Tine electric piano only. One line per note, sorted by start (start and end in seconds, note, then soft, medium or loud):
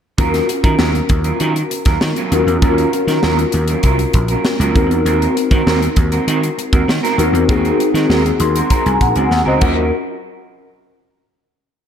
0.18 0.94 C#4 medium
0.18 0.94 F4 medium
0.18 0.94 F#4 medium
0.18 0.94 A#4 medium
2.32 2.50 C#4 medium
2.32 2.51 F4 medium
2.32 2.51 F#4 medium
2.32 2.51 A#4 medium
2.62 3.37 C#4 medium
2.62 3.37 F4 medium
2.62 3.37 F#4 medium
2.62 3.38 A#4 medium
4.75 5.72 C4 medium
4.75 5.73 D#4 medium
4.75 5.73 F#4 medium
4.75 5.73 A#4 medium
7.18 7.37 C4 medium
7.18 7.37 D#4 medium
7.18 7.37 F#4 medium
7.18 7.37 A#4 medium
7.48 8.24 C4 medium
7.48 8.24 D#4 medium
7.48 8.24 F#4 medium
7.48 8.24 G#4 medium
8.40 8.69 C6 medium
8.71 8.85 A#5 medium
8.86 9.00 G#5 medium
9.01 9.30 F#5 medium
9.31 9.60 F#5 medium
9.48 9.62 C5 medium
9.48 9.62 D#5 medium
9.62 9.91 C#4 medium
9.62 9.91 F4 medium
9.62 9.91 F#4 medium
9.62 9.91 A#4 medium